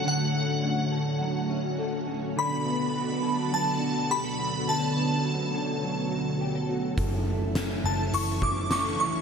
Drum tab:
HH |--------|--------|--------|x-x-x-x-|
SD |--------|--------|--------|--o---o-|
BD |--------|--------|--------|o----o--|